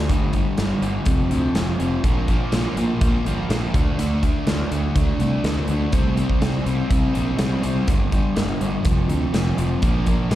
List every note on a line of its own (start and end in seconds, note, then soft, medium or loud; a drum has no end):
0.00 0.10 D4 medium
0.09 0.41 G1 medium
0.09 0.33 G2 medium
0.09 0.34 D3 medium
0.09 0.35 G3 medium
0.09 kick medium
0.09 closed hi-hat medium
0.33 0.56 G2 medium
0.33 0.57 D3 medium
0.33 0.58 G3 medium
0.33 kick medium
0.33 closed hi-hat soft
0.57 0.74 G1 medium
0.57 0.80 G2 medium
0.57 0.81 D3 medium
0.57 0.82 G3 medium
0.57 snare medium
0.57 closed hi-hat medium
0.81 0.98 G1 medium
0.81 1.04 G2 medium
0.81 1.05 D3 medium
0.81 1.05 G3 medium
0.81 closed hi-hat soft
1.05 1.23 F1 medium
1.05 1.29 F2 medium
1.05 1.31 C3 medium
1.05 1.32 F3 medium
1.05 kick loud
1.05 closed hi-hat medium
1.30 1.46 D2 medium
1.30 1.55 F2 medium
1.30 1.56 C3 medium
1.30 1.57 F3 medium
1.30 closed hi-hat soft
1.55 1.71 F1 medium
1.55 1.79 F2 medium
1.55 1.79 C3 medium
1.55 1.81 F3 medium
1.55 snare medium
1.55 closed hi-hat medium
1.80 1.96 F1 medium
1.80 2.03 F2 medium
1.80 2.03 C3 medium
1.80 2.04 F3 medium
1.80 closed hi-hat medium
2.04 2.35 A#1 medium
2.04 2.28 A#2 medium
2.04 2.30 F3 medium
2.04 2.29 A#3 medium
2.04 kick medium
2.04 closed hi-hat medium
2.28 2.52 A#2 medium
2.28 2.54 F3 medium
2.28 2.54 A#3 medium
2.28 kick medium
2.28 closed hi-hat soft
2.52 2.68 A#1 medium
2.52 2.76 A#2 medium
2.52 2.78 F3 medium
2.52 2.77 A#3 medium
2.52 snare medium
2.52 closed hi-hat medium
2.76 2.92 A#1 medium
2.76 3.00 A#2 medium
2.76 3.01 F3 medium
2.76 3.02 A#3 medium
2.76 closed hi-hat medium
3.01 3.17 A#1 medium
3.01 3.24 A#2 medium
3.01 3.25 F3 medium
3.01 3.26 A#3 medium
3.01 kick loud
3.01 closed hi-hat medium
3.25 3.41 G1 medium
3.25 3.48 A#2 medium
3.25 3.49 F3 medium
3.25 3.50 A#3 medium
3.25 closed hi-hat medium
3.49 3.65 A#1 medium
3.49 3.73 A#2 medium
3.49 3.73 F3 medium
3.49 3.74 A#3 medium
3.49 snare medium
3.49 closed hi-hat medium
3.74 3.90 D2 medium
3.74 3.97 D3 medium
3.74 3.98 A3 medium
3.74 3.99 D4 medium
3.74 kick medium
3.74 closed hi-hat medium
3.98 4.30 D2 medium
3.98 4.21 D3 medium
3.98 4.22 A3 medium
3.98 4.22 D4 loud
3.98 closed hi-hat medium
4.23 4.46 D3 medium
4.23 4.47 A3 medium
4.23 4.48 D4 medium
4.23 kick medium
4.23 closed hi-hat medium
4.47 4.63 D2 medium
4.47 4.70 D3 medium
4.47 4.71 A3 medium
4.47 4.72 D4 medium
4.47 snare medium
4.47 closed hi-hat medium
4.71 4.87 D2 medium
4.71 4.95 D3 medium
4.71 4.96 A3 medium
4.71 4.97 D4 medium
4.71 closed hi-hat medium
4.96 5.12 D2 medium
4.96 5.19 D3 medium
4.96 5.20 A3 medium
4.96 5.20 D4 medium
4.96 kick loud
4.96 closed hi-hat medium
5.19 5.35 C2 medium
5.19 5.43 D3 medium
5.19 5.44 A3 medium
5.19 5.45 D4 medium
5.19 closed hi-hat medium
5.44 5.60 D2 medium
5.44 5.69 D3 medium
5.44 5.69 A3 medium
5.44 5.71 D4 medium
5.44 snare medium
5.44 closed hi-hat medium
5.68 5.85 D2 medium
5.68 5.92 D3 medium
5.68 5.93 A3 medium
5.68 closed hi-hat medium
5.72 5.93 D4 medium
5.92 6.25 C2 medium
5.92 6.15 C3 medium
5.92 6.16 G3 medium
5.92 6.16 C4 medium
5.92 kick medium
5.92 closed hi-hat medium
6.16 6.39 C3 medium
6.16 6.41 G3 medium
6.16 6.41 C4 medium
6.16 closed hi-hat soft
6.29 kick medium
6.40 6.58 C2 medium
6.40 6.64 C3 medium
6.40 6.65 G3 medium
6.40 6.66 C4 medium
6.40 snare medium
6.40 closed hi-hat medium
6.65 6.82 C2 medium
6.65 6.88 C3 medium
6.65 6.89 G3 medium
6.65 6.90 C4 medium
6.65 closed hi-hat medium
6.90 7.06 C2 medium
6.90 7.13 C3 medium
6.90 7.13 G3 medium
6.90 7.14 C4 medium
6.90 kick loud
6.90 closed hi-hat medium
7.14 7.31 A#1 medium
7.14 7.36 C3 medium
7.14 7.37 G3 medium
7.14 7.38 C4 medium
7.14 closed hi-hat medium
7.37 7.55 C2 medium
7.37 7.61 C3 medium
7.37 7.61 G3 medium
7.37 7.62 C4 medium
7.37 snare medium
7.37 closed hi-hat medium
7.62 7.80 C2 medium
7.62 7.86 C3 medium
7.62 7.86 G3 medium
7.62 7.87 C4 medium
7.62 closed hi-hat medium
7.87 8.20 G1 medium
7.87 8.11 G2 medium
7.87 8.12 D3 medium
7.87 8.12 G3 medium
7.87 kick medium
7.87 closed hi-hat medium
8.12 8.34 G2 medium
8.12 8.35 D3 medium
8.12 8.36 G3 medium
8.12 kick medium
8.12 closed hi-hat medium
8.36 8.53 G1 medium
8.36 8.59 G2 medium
8.36 8.60 D3 medium
8.36 8.61 G3 medium
8.36 snare medium
8.36 closed hi-hat medium
8.60 8.77 G1 medium
8.60 8.84 G2 medium
8.60 8.84 D3 medium
8.60 8.85 G3 medium
8.60 closed hi-hat medium
8.85 9.01 F1 medium
8.85 9.08 F2 medium
8.85 9.09 C3 medium
8.85 9.10 F3 medium
8.85 kick loud
8.85 closed hi-hat medium
9.08 9.25 D2 medium
9.08 9.33 F2 medium
9.08 9.34 C3 medium
9.08 9.35 F3 medium
9.08 closed hi-hat medium
9.33 9.50 F1 medium
9.33 9.57 F2 medium
9.33 9.58 C3 medium
9.33 9.59 F3 medium
9.33 snare loud
9.33 closed hi-hat medium
9.58 9.75 F1 medium
9.58 9.81 F2 medium
9.58 9.82 C3 medium
9.58 9.82 F3 medium
9.58 closed hi-hat medium
9.82 10.14 A#1 medium
9.82 10.05 A#2 medium
9.82 10.07 F3 medium
9.82 10.07 A#3 loud
9.82 kick medium
9.82 closed hi-hat medium
10.06 10.29 A#2 medium
10.06 10.31 F3 medium
10.06 10.30 A#3 medium
10.06 kick medium
10.06 closed hi-hat medium
10.30 10.35 A#1 medium
10.30 10.35 A#2 medium
10.30 10.35 F3 medium
10.30 10.35 A#3 medium
10.30 snare medium
10.30 closed hi-hat medium